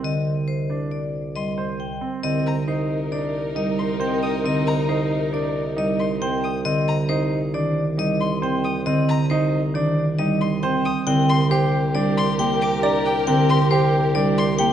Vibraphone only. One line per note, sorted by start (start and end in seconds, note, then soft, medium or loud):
0.04 0.33 D#5 medium
0.48 0.76 C5 medium
0.92 1.21 D5 medium
1.35 1.65 D#5 medium
1.80 2.09 G5 medium
2.23 2.53 D#5 medium
2.68 2.97 C5 medium
3.12 3.41 D5 medium
3.56 3.85 D#5 medium
4.01 4.29 G5 medium
4.46 4.74 D#5 medium
4.89 5.18 C5 medium
5.34 5.62 D5 medium
5.78 6.06 D#5 medium
6.22 6.50 G5 medium
6.65 6.94 D#5 loud
7.09 7.38 C5 medium
7.54 7.83 D5 medium
7.99 8.27 D#5 loud
8.43 8.71 G5 medium
8.86 9.15 D#5 loud
9.30 9.59 C5 medium
9.75 10.03 D5 medium
10.19 10.47 D#5 medium
10.63 10.91 G5 medium
11.07 11.35 G5 loud
11.51 11.80 C5 medium
11.95 12.24 D5 medium
12.39 12.68 G5 loud
12.83 13.12 A#5 medium
13.27 13.56 G5 loud
13.71 14.00 C5 medium
14.15 14.44 D5 medium
14.59 14.73 G5 loud